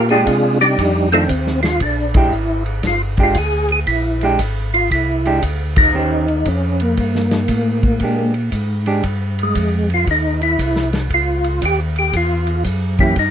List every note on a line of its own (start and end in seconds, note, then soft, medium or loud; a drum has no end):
0.00 0.25 A#2 medium
0.09 0.26 G#3 medium
0.09 0.58 G#3 medium
0.09 0.26 D4 medium
0.09 0.58 D4 medium
0.09 0.58 F4 medium
0.09 0.26 G4 medium
0.09 0.58 G#4 medium
0.09 ride soft
0.26 0.77 C3 medium
0.26 kick soft
0.26 hi-hat pedal medium
0.26 ride medium
0.61 1.09 G3 medium
0.61 1.09 D4 medium
0.61 1.09 D#4 medium
0.61 1.09 G4 medium
0.61 ride soft
0.78 1.28 F2 medium
0.78 kick soft
0.78 ride medium
1.12 1.28 D#3 medium
1.12 1.29 A3 medium
1.12 1.24 A3 medium
1.12 1.60 C4 medium
1.12 1.29 D4 medium
1.12 1.24 D#4 medium
1.12 1.24 F4 medium
1.12 1.24 A4 medium
1.12 ride medium
1.29 1.80 D#2 medium
1.29 kick soft
1.29 hi-hat pedal medium
1.29 ride medium
1.47 snare soft
1.63 1.81 F4 loud
1.63 snare soft
1.63 ride soft
1.80 2.31 A#1 medium
1.80 2.17 D4 medium
1.80 kick soft
1.80 ride medium
2.14 2.32 G#3 medium
2.14 2.32 D4 medium
2.14 2.63 E4 medium
2.14 2.32 G4 medium
2.14 kick medium
2.14 ride medium
2.32 2.82 G#1 medium
2.32 hi-hat pedal soft
2.66 ride soft
2.83 3.34 G1 medium
2.83 kick soft
2.83 snare soft
2.83 ride medium
2.87 3.02 F4 medium
3.17 3.35 G#3 medium
3.17 3.35 D4 medium
3.17 3.35 G4 medium
3.17 kick medium
3.17 ride soft
3.23 3.38 F4 medium
3.35 3.86 D2 medium
3.35 3.71 G#4 medium
3.35 kick soft
3.35 hi-hat pedal medium
3.35 ride medium
3.68 3.80 G#4 medium
3.68 ride soft
3.87 4.38 A#1 medium
3.87 4.36 E4 medium
3.87 kick soft
3.87 ride medium
4.21 4.38 G#3 medium
4.21 4.39 D4 medium
4.21 4.39 G4 medium
4.21 ride soft
4.39 4.89 G#1 medium
4.39 kick soft
4.39 hi-hat pedal soft
4.39 ride medium
4.74 4.90 F4 medium
4.74 ride soft
4.91 5.41 C2 medium
4.91 5.40 E4 medium
4.91 kick soft
4.91 ride medium
5.25 5.42 G#3 medium
5.25 5.42 D4 medium
5.25 5.42 G4 medium
5.25 ride soft
5.42 5.93 D2 medium
5.42 kick soft
5.42 hi-hat pedal medium
5.42 ride medium
5.76 6.49 D#4 loud
5.76 kick medium
5.76 ride medium
5.94 6.44 D#2 medium
5.94 6.25 D#3 medium
5.94 6.26 C#4 medium
5.94 6.26 G4 medium
5.94 6.26 C5 medium
6.28 ride soft
6.45 6.96 F2 medium
6.45 6.82 C#4 medium
6.45 kick soft
6.45 hi-hat pedal medium
6.45 ride medium
6.80 8.32 A#3 medium
6.80 ride soft
6.97 7.48 G2 medium
6.97 kick soft
6.97 ride medium
7.15 snare soft
7.31 snare soft
7.31 ride soft
7.48 7.99 A2 medium
7.48 kick soft
7.48 hi-hat pedal soft
7.48 ride medium
7.83 kick medium
7.83 ride soft
8.00 8.51 A#2 medium
8.00 8.33 G#3 medium
8.00 kick soft
8.00 ride medium
8.04 8.33 D4 soft
8.04 8.33 G4 medium
8.34 ride soft
8.52 9.02 G#2 medium
8.52 kick soft
8.52 hi-hat pedal medium
8.52 ride medium
8.86 9.03 G#3 medium
8.86 9.03 D4 medium
8.86 9.03 G4 medium
8.86 ride soft
9.03 9.54 G2 medium
9.03 kick soft
9.03 ride medium
9.39 ride soft
9.43 9.89 G#3 medium
9.55 10.06 F2 medium
9.55 kick soft
9.55 hi-hat pedal soft
9.55 ride medium
9.90 ride soft
9.94 10.08 F4 medium
10.07 10.57 D#2 medium
10.07 10.41 D#4 medium
10.07 kick soft
10.07 ride medium
10.41 10.90 E4 medium
10.41 ride soft
10.59 11.09 C2 medium
10.59 kick soft
10.59 hi-hat pedal medium
10.59 ride medium
10.76 snare soft
10.93 snare soft
10.93 ride soft
11.10 11.60 C#2 medium
11.10 kick soft
11.10 ride medium
11.14 11.66 F4 medium
11.44 ride soft
11.62 12.12 D#2 medium
11.62 11.80 G4 loud
11.62 kick soft
11.62 hi-hat pedal medium
11.62 ride medium
11.96 12.16 G4 medium
11.96 ride soft
12.13 12.64 E2 medium
12.13 12.64 F4 medium
12.13 kick soft
12.13 ride medium
12.47 ride soft
12.64 13.15 F#2 medium
12.64 kick soft
12.64 hi-hat pedal medium
12.64 ride medium
12.98 13.16 E3 medium
12.98 13.16 A#3 medium
12.98 13.16 C#4 medium
12.98 13.16 E4 loud
12.98 13.16 G4 medium
12.98 kick soft
12.98 ride soft
13.16 13.31 G2 medium
13.16 13.31 D#4 medium
13.16 kick soft
13.16 ride medium